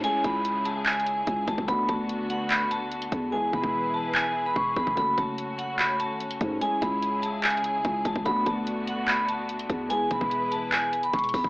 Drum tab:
HH |x-----------x-----------x-----------x-----------x---x---x---x-----------x-----------x-----------|x-----------x-----------x-----------x-----------x-----------x-----------x-----x-----x-----------|------------------------------------------------------------------------------------------------|x-----------x-----------x-----------x-----------x-----------x-----------x-----x-----x-----------|
CP |------------------------------------------------x-----------------------------------------------|------------------------------------------------x-----------------------------------------------|------------------------------------------------x-----------------------------------------------|------------------------------------------------x-----------------------------------------------|
BD |------------o-----------------------------------------------------------o-----------o-----o-----|o-----------o-----------------------------------------------------------------------o-----------|------------o-----o-----------------------------------------------------o-----------o-----o-----|o-----------o-----------------------------------------------------------------------o-----------|

HH |x-----------x-----------x-----------x-----------x---x---x---x-----------x-----------x-----------|x-----------x-----------x-----------x-----------x-----------x-----------x-----x-----x-----------|x-----------x-----------x-----------x-----------x-----------x-----x-----x--x--x--x--o-----------|
CP |------------------------------------------------x-----------------------------------------------|------------------------------------------------x-----------------------------------------------|------------------------------------------------x-----------------------------------------------|
BD |------------o-----------------------------------------------------------o-----------o-----o-----|o-----------o-----------------------------------------------------------------------o-----------|------------o-----o-----------------------------------------------------o-----------o-----o-----|